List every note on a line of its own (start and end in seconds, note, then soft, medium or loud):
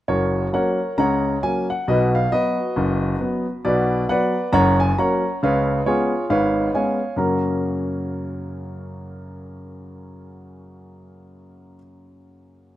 0.08 0.46 F#1 medium
0.08 0.47 F#2 medium
0.08 0.51 F#4 soft
0.08 0.51 A#4 medium
0.08 0.46 C#5 medium
0.53 0.78 F#3 soft
0.53 0.78 A#3 soft
0.53 0.78 C#4 soft
0.53 0.96 A#4 medium
0.53 0.96 C#5 medium
0.53 0.91 F#5 medium
0.98 1.36 C#2 medium
0.98 1.36 C#3 medium
0.98 1.40 C#5 medium
0.98 1.40 F#5 medium
0.98 1.36 A#5 medium
1.43 1.67 F#3 soft
1.43 1.68 A#3 soft
1.43 1.68 C#4 soft
1.43 1.66 G#5 medium
1.70 1.85 F#5 medium
1.88 2.25 B1 medium
1.88 2.25 B2 medium
1.88 2.13 F#4 medium
1.88 2.13 B4 medium
1.88 2.11 D#5 medium
2.15 2.29 F5 medium
2.32 2.57 F#3 soft
2.32 2.56 B3 medium
2.32 3.62 F#4 medium
2.32 3.62 B4 medium
2.32 3.45 D#5 medium
2.76 3.14 F#1 medium
2.76 3.14 F#2 medium
3.21 3.45 F#3 soft
3.21 3.45 B3 medium
3.65 4.03 B1 medium
3.65 4.02 B2 medium
3.65 4.07 F#4 medium
3.65 4.07 B4 medium
3.65 4.02 D5 medium
4.09 4.34 F#3 soft
4.09 4.33 B3 medium
4.09 4.51 B4 medium
4.09 4.51 D5 medium
4.09 4.47 F#5 medium
4.53 4.91 F#1 medium
4.53 4.91 F#2 medium
4.53 4.79 C#5 medium
4.53 4.79 F#5 medium
4.53 4.76 A#5 loud
4.80 4.95 G#5 medium
4.98 5.23 F#3 soft
4.98 5.23 A#3 medium
4.98 5.23 C#4 soft
4.98 5.40 C#5 medium
4.98 5.40 F#5 medium
4.98 5.36 A#5 medium
5.43 5.80 C#2 medium
5.43 5.80 C#3 medium
5.43 5.84 B4 medium
5.43 5.84 C#5 medium
5.43 5.81 F5 medium
5.86 6.11 G#3 soft
5.86 6.11 B3 medium
5.86 6.11 C#4 soft
5.86 6.28 F4 medium
5.86 6.28 G#4 medium
5.86 6.24 C#5 medium
6.30 6.68 G#1 medium
6.30 6.68 G#2 medium
6.30 6.72 B4 medium
6.30 6.72 C#5 medium
6.30 6.68 F5 medium
6.74 6.99 G#3 soft
6.74 6.99 B3 soft
6.74 6.99 C#4 soft
6.74 7.16 C#5 medium
6.74 7.16 F5 medium
6.74 7.12 G#5 medium
7.16 11.75 F#2 medium
7.16 11.75 C#3 soft
7.16 11.75 A#3 soft
7.16 11.76 C#4 soft
7.16 11.76 F#4 soft
7.16 11.76 A#4 soft
7.16 11.77 A#5 medium